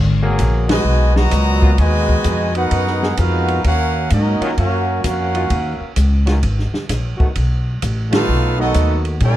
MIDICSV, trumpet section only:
0, 0, Header, 1, 2, 480
1, 0, Start_track
1, 0, Key_signature, -6, "minor"
1, 0, Tempo, 464037
1, 1846, Time_signature, 4, 2, 24, 8
1, 9689, End_track
2, 0, Start_track
2, 0, Title_t, "Trumpet section"
2, 0, Program_c, 0, 61
2, 725, Note_on_c, 0, 80, 110
2, 729, Note_on_c, 0, 75, 97
2, 730, Note_on_c, 0, 66, 92
2, 730, Note_on_c, 0, 71, 93
2, 1170, Note_off_c, 0, 80, 0
2, 1172, Note_off_c, 0, 75, 0
2, 1173, Note_off_c, 0, 66, 0
2, 1173, Note_off_c, 0, 71, 0
2, 1200, Note_on_c, 0, 82, 117
2, 1202, Note_on_c, 0, 66, 104
2, 1203, Note_on_c, 0, 71, 102
2, 1205, Note_on_c, 0, 75, 107
2, 1832, Note_off_c, 0, 71, 0
2, 1835, Note_off_c, 0, 75, 0
2, 1838, Note_off_c, 0, 66, 0
2, 1845, Note_off_c, 0, 82, 0
2, 1845, Note_on_c, 0, 71, 101
2, 1847, Note_on_c, 0, 75, 108
2, 1850, Note_on_c, 0, 66, 100
2, 1850, Note_on_c, 0, 80, 118
2, 2600, Note_off_c, 0, 71, 0
2, 2601, Note_off_c, 0, 75, 0
2, 2603, Note_off_c, 0, 66, 0
2, 2603, Note_off_c, 0, 80, 0
2, 2649, Note_on_c, 0, 63, 96
2, 2649, Note_on_c, 0, 71, 91
2, 2650, Note_on_c, 0, 78, 107
2, 2653, Note_on_c, 0, 70, 93
2, 3248, Note_off_c, 0, 71, 0
2, 3249, Note_off_c, 0, 63, 0
2, 3249, Note_off_c, 0, 78, 0
2, 3250, Note_off_c, 0, 70, 0
2, 3298, Note_on_c, 0, 70, 95
2, 3298, Note_on_c, 0, 77, 105
2, 3299, Note_on_c, 0, 71, 91
2, 3303, Note_on_c, 0, 63, 90
2, 3772, Note_off_c, 0, 70, 0
2, 3772, Note_off_c, 0, 77, 0
2, 3773, Note_off_c, 0, 71, 0
2, 3775, Note_off_c, 0, 63, 0
2, 3789, Note_on_c, 0, 70, 99
2, 3789, Note_on_c, 0, 77, 95
2, 3790, Note_on_c, 0, 78, 111
2, 3791, Note_on_c, 0, 61, 92
2, 4225, Note_off_c, 0, 70, 0
2, 4225, Note_off_c, 0, 77, 0
2, 4225, Note_off_c, 0, 78, 0
2, 4226, Note_off_c, 0, 61, 0
2, 4257, Note_on_c, 0, 61, 80
2, 4258, Note_on_c, 0, 66, 87
2, 4260, Note_on_c, 0, 70, 79
2, 4260, Note_on_c, 0, 75, 94
2, 4699, Note_off_c, 0, 61, 0
2, 4699, Note_off_c, 0, 66, 0
2, 4700, Note_off_c, 0, 70, 0
2, 4700, Note_off_c, 0, 75, 0
2, 4736, Note_on_c, 0, 70, 84
2, 4738, Note_on_c, 0, 61, 88
2, 4738, Note_on_c, 0, 66, 92
2, 4742, Note_on_c, 0, 77, 95
2, 5178, Note_off_c, 0, 70, 0
2, 5179, Note_off_c, 0, 61, 0
2, 5179, Note_off_c, 0, 66, 0
2, 5181, Note_off_c, 0, 77, 0
2, 5223, Note_on_c, 0, 70, 83
2, 5224, Note_on_c, 0, 61, 79
2, 5225, Note_on_c, 0, 77, 84
2, 5225, Note_on_c, 0, 78, 98
2, 6133, Note_off_c, 0, 70, 0
2, 6134, Note_off_c, 0, 61, 0
2, 6134, Note_off_c, 0, 77, 0
2, 6134, Note_off_c, 0, 78, 0
2, 8425, Note_on_c, 0, 63, 98
2, 8427, Note_on_c, 0, 77, 109
2, 8428, Note_on_c, 0, 69, 101
2, 8429, Note_on_c, 0, 71, 99
2, 8860, Note_off_c, 0, 63, 0
2, 8862, Note_off_c, 0, 69, 0
2, 8862, Note_off_c, 0, 71, 0
2, 8862, Note_off_c, 0, 77, 0
2, 8900, Note_on_c, 0, 75, 108
2, 8901, Note_on_c, 0, 66, 87
2, 8905, Note_on_c, 0, 59, 89
2, 8905, Note_on_c, 0, 69, 91
2, 9338, Note_off_c, 0, 66, 0
2, 9338, Note_off_c, 0, 75, 0
2, 9340, Note_off_c, 0, 59, 0
2, 9340, Note_off_c, 0, 69, 0
2, 9550, Note_on_c, 0, 70, 96
2, 9551, Note_on_c, 0, 65, 102
2, 9551, Note_on_c, 0, 74, 100
2, 9553, Note_on_c, 0, 80, 114
2, 9689, Note_off_c, 0, 65, 0
2, 9689, Note_off_c, 0, 70, 0
2, 9689, Note_off_c, 0, 74, 0
2, 9689, Note_off_c, 0, 80, 0
2, 9689, End_track
0, 0, End_of_file